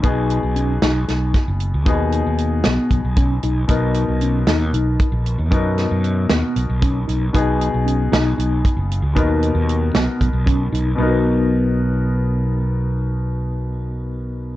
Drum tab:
HH |xxxxxxx|xxxxxxx|xxxxxxx|xxxxxxx|
SD |---ooo-|---o---|---o---|-o-o---|
BD |o----o-|o---oo-|o----o-|o----o-|

HH |xxxxxxx|xxxxxxx|-------|-------|
SD |---o---|---o---|-------|-------|
BD |o----o-|o---oo-|-------|-------|